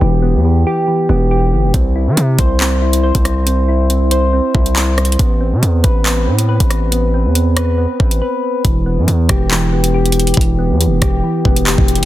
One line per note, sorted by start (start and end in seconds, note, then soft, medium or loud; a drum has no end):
0.00 0.36 E1 loud
0.00 0.44 E3 medium
0.00 0.21 B3 medium
0.00 0.65 G4 medium
0.22 1.08 B3 medium
0.34 0.65 E2 loud
0.45 0.86 E3 medium
0.67 1.30 G4 loud
0.88 1.74 E3 medium
1.09 1.54 E1 loud
1.09 1.74 B3 medium
1.31 1.74 G4 medium
1.52 1.65 G1 loud
1.64 1.73 E1 loud
1.74 2.08 C2 loud
1.74 2.16 C4 medium
1.74 kick loud
1.74 closed hi-hat medium
1.96 2.81 E4 medium
2.07 2.17 E3 loud
2.17 2.38 C3 loud
2.17 2.59 C4 medium
2.17 closed hi-hat medium
2.39 3.12 C2 loud
2.39 3.02 C5 medium
2.39 kick medium
2.39 closed hi-hat medium
2.60 3.45 C4 medium
2.60 clap loud
2.82 3.67 E4 medium
2.93 closed hi-hat medium
3.03 4.10 C5 medium
3.15 4.40 C2 loud
3.15 kick medium
3.15 closed hi-hat medium
3.25 cross-stick medium
3.25 closed hi-hat medium
3.46 3.89 C4 medium
3.46 closed hi-hat medium
3.68 4.53 E4 medium
3.90 4.32 C4 medium
3.90 closed hi-hat medium
4.11 4.75 C5 loud
4.11 closed hi-hat medium
4.33 5.19 C4 medium
4.54 5.17 C2 loud
4.54 5.19 E4 medium
4.54 kick medium
4.66 closed hi-hat medium
4.76 5.19 C5 medium
4.76 clap loud
4.98 cross-stick medium
4.98 closed hi-hat soft
5.05 closed hi-hat medium
5.12 closed hi-hat medium
5.19 5.54 A1 loud
5.19 5.61 B3 medium
5.19 kick loud
5.19 closed hi-hat medium
5.41 6.26 C4 medium
5.52 5.62 C3 loud
5.62 5.83 E2 loud
5.62 6.04 B3 medium
5.62 closed hi-hat medium
5.84 6.29 A1 loud
5.84 6.48 B4 loud
5.84 kick medium
5.84 closed hi-hat medium
6.06 6.91 B3 medium
6.06 clap loud
6.27 6.59 A2 loud
6.27 7.13 C4 medium
6.39 closed hi-hat medium
6.49 7.55 B4 loud
6.60 7.27 A1 loud
6.60 kick medium
6.60 closed hi-hat medium
6.70 cross-stick medium
6.70 closed hi-hat medium
6.92 7.34 B3 medium
6.92 closed hi-hat medium
7.14 7.98 C4 medium
7.25 7.87 E2 loud
7.35 7.77 B3 medium
7.35 closed hi-hat medium
7.56 8.20 B4 loud
7.56 cross-stick medium
7.56 closed hi-hat medium
7.78 8.64 B3 medium
8.00 8.21 A1 loud
8.00 8.64 C4 medium
8.00 kick medium
8.11 closed hi-hat medium
8.22 8.65 B4 medium
8.65 8.99 E1 loud
8.65 9.06 E3 medium
8.65 kick loud
8.65 closed hi-hat medium
8.86 9.71 B3 medium
8.98 9.07 G2 loud
9.07 9.28 E2 loud
9.07 9.50 E3 medium
9.07 closed hi-hat medium
9.29 10.33 E1 loud
9.29 9.93 G4 loud
9.29 kick loud
9.29 cross-stick medium
9.29 closed hi-hat medium
9.51 10.36 E3 medium
9.51 clap loud
9.72 10.57 B3 medium
9.84 closed hi-hat medium
9.94 11.01 G4 medium
10.06 closed hi-hat soft
10.12 closed hi-hat medium
10.20 closed hi-hat medium
10.27 closed hi-hat medium
10.34 10.72 E1 loud
10.34 10.79 E3 medium
10.34 kick loud
10.34 closed hi-hat medium
10.41 closed hi-hat medium
10.59 11.44 B3 medium
10.70 10.88 E2 loud
10.81 11.22 E3 medium
10.81 closed hi-hat medium
10.86 11.01 E1 loud
11.02 11.23 E1 loud
11.02 11.66 G4 loud
11.02 kick medium
11.02 cross-stick medium
11.02 closed hi-hat medium
11.23 12.05 E3 medium
11.45 11.77 E1 loud
11.45 12.05 B3 medium
11.45 kick medium
11.56 closed hi-hat medium
11.67 12.05 G4 loud
11.67 clap loud
11.78 12.01 E1 loud
11.78 kick loud
11.88 closed hi-hat medium
11.95 closed hi-hat medium
12.00 12.05 G1 loud